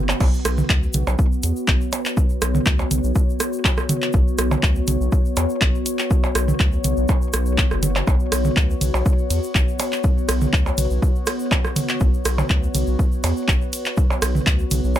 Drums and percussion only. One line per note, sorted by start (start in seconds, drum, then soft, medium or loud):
0.09 clap medium
0.09 percussion blips medium
0.09 percussion blips soft
0.09 shaker soft
0.20 kick loud
0.20 percussion blips medium
0.20 crash medium
0.20 percussion blips soft
0.20 shaker soft
0.34 shaker soft
0.45 cross-stick medium
0.45 closed hi-hat medium
0.45 shaker medium
0.58 mid tom loud
0.58 shaker soft
0.70 kick loud
0.70 clap loud
0.70 shaker medium
0.83 shaker soft
0.93 closed hi-hat loud
0.93 mid tom medium
0.93 shaker medium
1.07 percussion blips medium
1.07 percussion blips soft
1.07 shaker soft
1.19 kick loud
1.19 shaker medium
1.32 shaker soft
1.43 closed hi-hat medium
1.43 shaker medium
1.56 shaker soft
1.68 kick loud
1.68 clap loud
1.68 shaker medium
1.81 shaker soft
1.92 closed hi-hat medium
1.92 percussion blips medium
1.92 percussion blips soft
1.92 shaker medium
2.05 clap medium
2.05 shaker soft
2.17 kick loud
2.17 shaker medium
2.30 shaker soft
2.42 cross-stick medium
2.42 closed hi-hat loud
2.42 shaker medium
2.55 mid tom loud
2.55 shaker soft
2.66 kick loud
2.66 clap loud
2.66 shaker medium
2.79 percussion blips medium
2.79 percussion blips soft
2.79 shaker soft
2.91 closed hi-hat loud
2.91 mid tom medium
2.91 shaker medium
3.04 shaker soft
3.15 kick loud
3.15 shaker medium
3.30 shaker soft
3.40 cross-stick medium
3.40 closed hi-hat loud
3.40 shaker loud
3.53 shaker soft
3.65 kick loud
3.65 clap loud
3.65 percussion blips medium
3.65 percussion blips soft
3.65 shaker medium
3.78 cross-stick medium
3.78 shaker soft
3.89 closed hi-hat medium
3.89 mid tom loud
3.89 shaker medium
4.02 clap medium
4.02 shaker soft
4.13 kick loud
4.13 shaker medium
4.28 shaker soft
4.38 cross-stick medium
4.38 closed hi-hat loud
4.38 shaker medium
4.51 mid tom loud
4.51 percussion blips medium
4.51 percussion blips soft
4.51 shaker soft
4.63 kick loud
4.63 clap medium
4.63 shaker medium
4.75 shaker soft
4.87 closed hi-hat loud
4.87 mid tom medium
4.87 shaker medium
5.01 shaker soft
5.12 kick loud
5.12 shaker medium
5.25 shaker soft
5.36 closed hi-hat loud
5.36 percussion blips medium
5.36 percussion blips soft
5.36 shaker loud
5.49 shaker soft
5.61 kick loud
5.61 clap loud
5.61 shaker medium
5.75 shaker soft
5.86 closed hi-hat loud
5.86 shaker loud
5.99 clap medium
5.99 shaker soft
6.11 kick loud
6.11 shaker soft
6.23 percussion blips medium
6.23 percussion blips soft
6.23 shaker soft
6.35 cross-stick medium
6.35 closed hi-hat medium
6.35 shaker loud
6.48 mid tom medium
6.48 shaker soft
6.60 kick loud
6.60 clap medium
6.60 shaker medium
6.72 shaker soft
6.84 closed hi-hat loud
6.84 mid tom medium
6.84 shaker loud
6.97 shaker soft
7.08 kick loud
7.08 percussion blips medium
7.08 percussion blips soft
7.08 shaker medium
7.22 shaker soft
7.33 cross-stick medium
7.33 closed hi-hat loud
7.33 shaker loud
7.46 shaker soft
7.58 kick loud
7.58 clap medium
7.58 shaker medium
7.71 cross-stick medium
7.71 shaker soft
7.83 closed hi-hat loud
7.83 mid tom medium
7.83 shaker loud
7.96 clap medium
7.96 percussion blips medium
7.96 percussion blips soft
7.96 shaker soft
8.07 kick loud
8.07 percussion blips medium
8.07 percussion blips soft
8.07 shaker medium
8.20 shaker soft
8.32 cross-stick medium
8.32 closed hi-hat medium
8.32 ride medium
8.32 shaker loud
8.44 mid tom medium
8.44 shaker soft
8.57 kick loud
8.57 clap medium
8.57 shaker medium
8.70 shaker soft
8.81 closed hi-hat loud
8.81 mid tom medium
8.81 ride medium
8.81 shaker medium
8.94 percussion blips medium
8.94 percussion blips soft
8.94 shaker soft
9.06 kick loud
9.06 shaker medium
9.18 shaker soft
9.30 closed hi-hat medium
9.30 ride medium
9.30 shaker loud
9.43 shaker soft
9.55 kick loud
9.55 clap medium
9.55 shaker medium
9.68 shaker soft
9.79 closed hi-hat medium
9.79 ride medium
9.79 percussion blips medium
9.79 percussion blips soft
9.79 shaker loud
9.92 clap medium
9.92 shaker soft
10.04 kick loud
10.04 shaker medium
10.18 shaker soft
10.29 cross-stick medium
10.29 closed hi-hat medium
10.29 ride medium
10.29 shaker medium
10.41 mid tom medium
10.41 shaker soft
10.53 kick loud
10.53 clap medium
10.53 shaker soft
10.66 percussion blips medium
10.66 percussion blips soft
10.66 shaker soft
10.78 closed hi-hat medium
10.78 mid tom medium
10.78 ride medium
10.78 shaker loud
10.90 shaker soft
11.02 kick loud
11.02 shaker medium
11.16 shaker soft
11.26 cross-stick medium
11.26 closed hi-hat medium
11.26 ride medium
11.26 shaker medium
11.40 shaker soft
11.52 kick loud
11.52 clap medium
11.52 percussion blips medium
11.52 percussion blips soft
11.52 shaker soft
11.65 cross-stick medium
11.65 shaker soft
11.76 closed hi-hat medium
11.76 mid tom medium
11.76 ride medium
11.76 shaker medium
11.89 clap medium
11.89 shaker soft
12.00 kick loud
12.00 shaker soft
12.14 shaker soft
12.25 cross-stick medium
12.25 closed hi-hat medium
12.25 ride medium
12.25 shaker medium
12.38 mid tom medium
12.38 percussion blips medium
12.38 percussion blips soft
12.38 shaker soft
12.49 kick loud
12.49 clap medium
12.49 shaker soft
12.63 shaker soft
12.75 closed hi-hat medium
12.75 mid tom medium
12.75 ride medium
12.75 shaker medium
12.87 shaker soft
12.99 kick loud
12.99 shaker soft
13.12 shaker soft
13.24 closed hi-hat medium
13.24 ride medium
13.24 percussion blips medium
13.24 percussion blips soft
13.24 shaker medium
13.37 shaker soft
13.48 kick loud
13.48 clap medium
13.48 shaker medium
13.61 shaker soft
13.73 closed hi-hat medium
13.73 ride medium
13.73 shaker medium
13.85 clap medium
13.85 shaker soft
13.97 kick loud
13.97 shaker medium
14.10 percussion blips medium
14.10 percussion blips soft
14.10 shaker soft
14.22 cross-stick medium
14.22 closed hi-hat medium
14.22 ride medium
14.22 shaker loud
14.35 mid tom medium
14.35 shaker soft
14.47 kick loud
14.47 clap loud
14.47 shaker medium
14.59 shaker soft
14.71 closed hi-hat medium
14.71 mid tom medium
14.71 ride loud
14.71 shaker medium
14.84 shaker soft
14.95 percussion blips medium
14.95 percussion blips soft
14.95 shaker medium